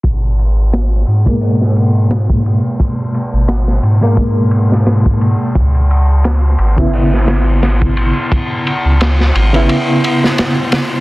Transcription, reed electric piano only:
X:1
M:4/4
L:1/16
Q:"Swing 16ths" 1/4=87
K:G#m
V:1 name="Reed electric piano"
z6 z [B,,G,A,]8- [B,,G,A,]- | [B,,G,A,]6- [B,,G,A,] [B,,G,A,]8- [B,,G,A,] | z6 z [C,B,E]8- [C,B,E]- | [C,B,E]6- [C,B,E] [C,B,E]8- [C,B,E] |]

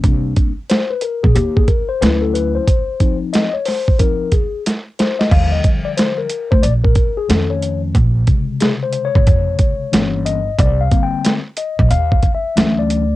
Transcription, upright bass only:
X:1
M:4/4
L:1/16
Q:"Swing 16ths" 1/4=91
K:Bbdor
V:1 name="Upright bass" clef=bass
C,,2 z4 z B,,, E,,2 z2 =D,,4 | z16 | E,,2 z4 z =D,, B,,,2 z2 F,,4 | B,,,2 z4 z A,,, F,,2 z2 G,,,4 |
C,,2 z4 z B,,, E,,2 z2 =D,,4 |]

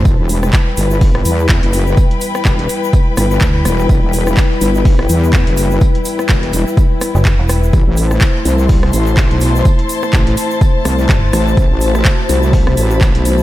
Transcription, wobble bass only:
X:1
M:4/4
L:1/16
Q:"Swing 16ths" 1/4=125
K:Em
V:1 name="Wobble bass" clef=bass
E,,, E,,,3 z2 G,,,4 E,,3 F,,,3 | z4 E,,,2 z4 G,,,2 z2 E,,,2 | E,,, E,,,3 z2 G,,,4 E,,3 F,,,3 | z4 E,,,2 E,,, z8 z |
A,,, A,,,3 z2 C,,4 A,,,3 B,,,3 | z4 A,,,2 z4 C,,2 z2 A,,,2 | A,,, A,,,3 z2 C,,4 A,,,3 B,,,3 |]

